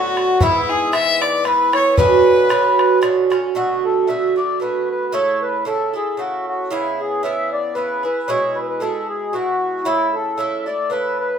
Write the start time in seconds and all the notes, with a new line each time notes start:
Already playing: A2 D3 B3 F#4
0.17 bodhran
0.41 G#2 E3 B3 E4, bodhran
0.69 G#4
0.93 G#2 E3 B3 E4 E5, bodhran
1.21 D5, bodhran
1.44 G#2 E3 B3 E4 B4, bodhran
1.73 E3 B3 E4 C#5, bodhran
1.97 B2 D3 C#4 F#4 B4, bodhran
2.49 B2 D3 C#4 F#4, bodhran
2.79 bodhran
3.02 B2 D3 C#4 F#4, bodhran
3.30 D3 C#4 F#4, bodhran
3.55 B2 D3 A3 F#4
3.84 A4
4.07 B2 D3 A3 F#4 E5
4.36 D3 A3 F#4 D5
4.60 B2 D3 A3 F#4 B4
4.90 B4
5.12 C#3 A3 E4 A4 C#5
5.42 B4
5.65 C#3 A3 E4 A4
5.93 A3 E4 G#4 A4
6.17 C#3 A3 E4 F#4 A4
6.47 F#4
6.71 C#3 B3 E4 G#4
7.00 G#4
7.23 C#3 B3 E4 G#4 E5
7.53 D5
7.75 C#3 B3 E4 G#4 B4
8.03 B3 E4 G#4 B4
8.28 B2 G#3 E4 G#4 C#5
8.55 B4
8.61 B4
8.68 B4
8.80 B2 G#3 E4 G#4 A4
9.09 G#4
9.33 B2 G#3 E4 F#4 G#4
9.85 C#3 A3 E4 A4
10.14 A4
10.37 C#3 A3 E4 A4 E5
10.66 A3 E4 A4 D5
10.90 C#3 A3 E4 A4 B4
11.19 B4